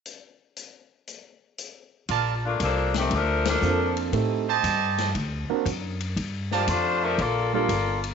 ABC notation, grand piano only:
X:1
M:4/4
L:1/8
Q:"Swing" 1/4=118
K:Bb
V:1 name="Grand piano"
z8 | z6 [B,CDFA]2 | [A,CEGA] z4 [B,CD^FB] z2 | z4 z [G,B,DFA] z2 |]